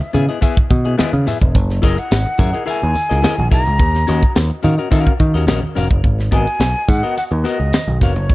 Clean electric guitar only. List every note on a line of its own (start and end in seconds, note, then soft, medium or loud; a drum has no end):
0.01 muted clean electric guitar stroke medium
0.13 0.25 B3 medium
0.13 0.25 E4 medium
0.13 0.25 G#4 medium
0.13 0.25 E5 medium
0.29 0.39 B3 soft
0.29 0.39 E4 medium
0.29 0.39 G#4 medium
0.29 0.39 D#5 medium
0.41 0.56 B3 medium
0.41 0.56 E4 medium
0.41 0.56 G#4 medium
0.41 0.56 E5 loud
0.70 muted clean electric guitar stroke soft
0.85 0.96 B3 medium
0.85 0.95 E4 medium
0.85 0.95 G#4 medium
0.85 0.95 D#5 medium
0.98 1.12 B3 loud
0.98 1.12 E4 loud
0.98 1.12 G#4 medium
0.98 1.12 D#5 loud
1.13 muted clean electric guitar stroke soft
1.26 1.37 B3 medium
1.26 1.38 E4 medium
1.26 1.38 G#4 medium
1.26 1.38 E5 medium
1.42 muted clean electric guitar stroke soft
1.82 1.96 E4 loud
1.82 1.96 G#4 loud
1.82 1.97 A#4 medium
1.82 1.97 D#5 loud
2.11 muted clean electric guitar stroke soft
2.26 muted clean electric guitar stroke soft
2.38 2.50 E4 medium
2.38 2.50 G#4 medium
2.38 2.50 A#4 medium
2.38 2.50 E5 medium
2.53 2.64 E4 medium
2.53 2.64 G#4 medium
2.53 2.63 A#4 medium
2.53 2.63 D#5 medium
2.66 2.80 E4 medium
2.66 2.80 G#4 medium
2.66 2.81 A#4 medium
2.66 2.81 E5 loud
2.95 muted clean electric guitar stroke soft
3.09 3.20 E4 medium
3.09 3.20 G#4 medium
3.09 3.20 A#4 medium
3.09 3.19 D#5 medium
3.22 3.37 E4 medium
3.22 3.37 G#4 medium
3.22 3.37 A#4 medium
3.22 3.36 D#5 medium
3.37 muted clean electric guitar stroke soft
3.51 3.62 E4 medium
3.51 3.62 G#4 medium
3.51 3.62 A#4 medium
3.51 3.63 E5 medium
3.66 muted clean electric guitar stroke soft
4.07 4.21 C#4 medium
4.07 4.21 F#4 loud
4.07 4.22 A#4 medium
4.07 4.22 D#5 medium
4.35 muted clean electric guitar stroke soft
4.50 muted clean electric guitar stroke medium
4.63 4.74 C#4 medium
4.63 4.74 F#4 medium
4.63 4.75 A#4 medium
4.63 4.75 F5 medium
4.78 4.89 C#4 medium
4.78 4.88 F#4 medium
4.78 4.88 A#4 medium
4.78 4.88 D#5 medium
4.91 5.12 C#4 medium
4.91 5.12 F#4 medium
4.91 5.12 A#4 medium
4.91 5.13 F5 medium
5.19 muted clean electric guitar stroke soft
5.34 5.45 C#4 medium
5.34 5.45 F#4 medium
5.34 5.45 A#4 medium
5.34 5.44 D#5 medium
5.47 5.61 C#4 medium
5.47 5.62 F#4 medium
5.47 5.62 A#4 medium
5.47 5.61 D#5 medium
5.62 muted clean electric guitar stroke soft
5.75 5.87 C#4 medium
5.75 5.87 F#4 medium
5.75 5.87 A#4 medium
5.75 5.87 F5 medium
5.90 muted clean electric guitar stroke soft
6.31 6.46 B3 medium
6.31 6.46 F#4 medium
6.31 6.46 A#4 medium
6.31 6.46 D#5 medium
6.60 muted clean electric guitar stroke soft
6.75 muted clean electric guitar stroke soft
7.03 7.16 B3 medium
7.03 7.16 F#4 medium
7.03 7.16 A#4 medium
7.03 7.16 D#5 medium
7.31 muted clean electric guitar stroke soft
7.44 7.58 B3 medium
7.44 7.59 F#4 medium
7.44 7.59 A#4 medium
7.44 7.59 D#5 medium
7.60 muted clean electric guitar stroke medium
7.73 muted clean electric guitar stroke soft
8.01 8.12 B3 medium
8.01 8.13 F#4 medium
8.01 8.13 A#4 medium
8.01 8.13 F5 medium
8.16 muted clean electric guitar stroke soft